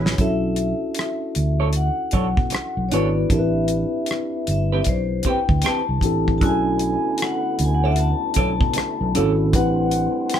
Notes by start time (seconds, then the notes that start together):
Already playing: A1 F#3 E4 G#4 B4 C#5
0.06 snare
0.18 B1 C#4 D4 E4 F#4 A4 E5, kick, closed hi-hat
0.56 closed hi-hat
0.95 closed hi-hat
0.99 cross-stick
1.35 D2, closed hi-hat
1.60 D4 A4 C#5
1.73 F#5, closed hi-hat
2.11 B1 D4 A4 C#5, kick, closed hi-hat
2.37 B2, kick
2.50 muted clean electric guitar stroke, closed hi-hat
2.55 cross-stick
2.77 B1
2.89 G#1 B3 D4 E4 C#5, closed hi-hat
2.93 F#4 A4 B4 C#5 D5
3.29 A1 C4 D4 E4 G4 A#4, kick, closed hi-hat
3.34 E5
3.39 B4
3.68 closed hi-hat
4.06 closed hi-hat
4.11 cross-stick
4.47 G1 E5, closed hi-hat
4.72 C4 G4 B4
4.82 D5, closed hi-hat
4.87 B1 C5, kick
5.23 C4 G4, kick, closed hi-hat
5.28 B4 G5
5.49 D2, kick
5.62 C4 G4, closed hi-hat
5.66 B4 A5, cross-stick
5.89 C2
6.01 A1 C4 D4 E4 G4, kick, closed hi-hat
6.05 A4
6.28 kick
6.38 D3 A3 B3 C#4 D4 A5, kick, closed hi-hat
6.42 B1 E4 F#4 G#4 G#5
6.50 A4
6.79 closed hi-hat
7.18 closed hi-hat
7.22 F#5, cross-stick
7.59 D2, closed hi-hat
7.64 G#5
7.74 F#5
7.84 D4 A4 C#5 E5
7.92 F#5, closed hi-hat
8.00 A5
8.34 B1 D4 A4 C#5, kick, closed hi-hat
8.39 A5
8.61 B2, kick
8.74 muted clean electric guitar stroke, closed hi-hat
8.78 cross-stick
9.01 B1
9.15 G#1 C#4 D4 E4 F#4 A4 C#5, closed hi-hat
9.53 A1 G3 C4 D4 E4 G4 B4 F#5, kick, closed hi-hat
9.91 closed hi-hat
10.30 G5, closed hi-hat
10.34 cross-stick